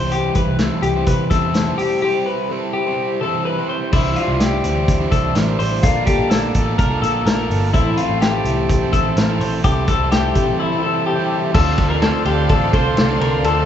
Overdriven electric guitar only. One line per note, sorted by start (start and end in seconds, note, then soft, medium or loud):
0.00 0.59 C3 medium
0.00 1.31 E3 medium
0.00 0.59 G3 medium
0.00 0.60 C4 medium
0.00 0.61 E4 medium
0.00 0.61 C5 medium
0.59 0.95 G3 medium
0.59 0.95 C4 medium
0.59 0.96 E4 medium
0.59 0.95 C5 medium
0.96 1.31 G3 soft
0.96 1.32 C4 soft
0.96 1.32 E4 soft
0.96 1.31 C5 soft
1.31 1.67 C3 medium
1.31 1.67 E3 medium
1.31 1.67 G3 medium
1.31 1.67 C4 medium
1.31 1.66 E4 medium
1.31 1.65 C5 medium
1.67 2.01 G3 soft
1.67 2.02 C4 soft
1.67 2.03 E4 soft
1.67 2.02 C5 medium
2.02 2.50 G3 medium
2.02 2.51 C4 medium
2.02 2.51 E4 medium
2.02 2.52 C5 medium
2.50 2.86 G3 medium
2.50 2.86 C4 medium
2.50 2.86 E4 medium
2.50 2.85 C5 medium
2.87 3.21 G3 soft
2.87 3.21 C4 soft
2.87 3.22 E4 soft
2.87 3.22 C5 medium
3.21 3.57 C3 medium
3.21 3.57 E3 medium
3.21 3.58 G3 medium
3.21 3.58 C4 medium
3.21 3.57 E4 medium
3.21 3.56 C5 medium
3.57 3.92 G3 soft
3.57 3.92 C4 soft
3.57 3.92 E4 soft
3.57 3.92 C5 medium
3.92 4.17 C3 medium
3.92 4.17 E3 medium
3.92 4.16 G3 medium
3.92 4.16 D4 medium
3.92 4.17 E4 medium
3.92 4.17 C5 medium
4.17 4.64 G3 medium
4.17 4.65 D4 medium
4.17 4.64 E4 medium
4.17 4.64 C5 medium
4.64 5.00 C3 medium
4.64 5.00 E3 medium
4.64 5.00 G3 medium
4.64 5.00 D4 medium
4.64 4.99 E4 medium
4.64 4.99 C5 medium
5.00 5.48 C3 medium
5.00 5.48 E3 medium
5.00 5.48 G3 medium
5.00 5.48 D4 medium
5.00 5.47 E4 medium
5.00 5.47 C5 medium
5.48 5.84 C3 medium
5.48 5.84 E3 medium
5.48 5.83 G3 medium
5.48 5.83 D4 medium
5.48 5.84 E4 medium
5.48 5.84 C5 medium
5.84 6.05 A#3 medium
5.84 6.06 D4 medium
5.84 6.07 F4 medium
5.84 6.08 A4 medium
6.06 6.53 A#3 medium
6.06 6.54 D4 medium
6.06 6.54 F4 medium
6.06 6.56 A4 medium
6.54 6.90 A#3 medium
6.54 6.90 D4 medium
6.54 6.90 F4 medium
6.54 6.89 A4 loud
6.90 7.39 A#3 medium
6.90 7.39 D4 medium
6.90 7.39 F4 medium
6.90 7.39 A4 medium
7.39 7.74 A#3 medium
7.39 7.75 D4 medium
7.39 7.75 F4 medium
7.39 7.74 A4 medium
7.74 7.98 A2 medium
7.74 7.98 E3 medium
7.74 7.97 A3 medium
7.74 7.97 C4 medium
7.74 7.98 E4 medium
7.74 7.99 A4 medium
7.98 8.47 A3 medium
7.98 8.47 C4 medium
7.98 8.47 E4 medium
7.98 8.47 A4 medium
8.47 8.82 A2 medium
8.47 8.82 E3 medium
8.47 8.82 A3 medium
8.47 8.81 C4 medium
8.47 8.81 E4 medium
8.47 8.81 A4 medium
8.82 9.29 A2 medium
8.82 9.30 E3 medium
8.82 9.29 A3 medium
8.82 9.29 C4 medium
8.82 9.29 E4 medium
8.82 9.29 A4 medium
9.29 9.64 A2 medium
9.29 9.63 E3 medium
9.29 9.64 A3 medium
9.29 9.64 C4 medium
9.29 9.64 E4 medium
9.29 9.65 A4 medium
9.64 9.88 C3 medium
9.64 9.88 E3 medium
9.64 9.86 G3 medium
9.64 9.87 C4 medium
9.64 9.88 E4 medium
9.64 9.88 A4 medium
9.87 10.35 G3 medium
9.87 10.36 C4 medium
9.87 10.35 E4 medium
9.87 10.37 A4 medium
10.36 10.71 C3 medium
10.36 10.72 E3 medium
10.36 10.72 G3 medium
10.36 10.71 C4 medium
10.36 10.71 E4 loud
10.36 10.71 A4 loud
10.72 11.20 C3 medium
10.72 11.19 E3 medium
10.72 11.19 G3 medium
10.72 11.19 C4 medium
10.72 11.18 E4 medium
10.72 11.18 A4 medium
11.19 11.56 C3 medium
11.19 11.55 E3 medium
11.19 11.55 G3 medium
11.19 11.55 C4 medium
11.19 11.55 E4 medium
11.19 11.55 A4 medium
11.56 11.91 A3 medium
11.56 11.91 C4 medium
11.56 11.90 F4 medium
11.56 11.89 A4 medium
11.90 12.26 C4 soft
11.90 12.26 F4 medium
11.90 12.26 A4 medium
12.26 12.61 D3 medium
12.26 12.61 A3 medium
12.26 12.61 C4 medium
12.26 12.60 F4 loud
12.26 12.60 A4 loud
12.61 13.09 D3 medium
12.61 13.10 A3 medium
12.61 13.09 C4 medium
12.61 13.08 F4 medium
12.61 13.09 A4 medium
13.09 13.45 D3 medium
13.09 13.43 A3 medium
13.09 13.44 C4 medium
13.09 13.45 F4 medium
13.09 13.45 A4 medium
13.44 13.65 A3 medium
13.44 13.65 C4 medium
13.44 13.65 F4 medium
13.44 13.65 A4 medium